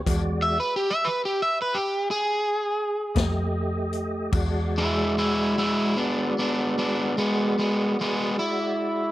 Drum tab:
CC |x-----------|x-----------|
HH |x--------x-x|------------|
SD |---------o--|------------|
BD |o--------o--|o-----------|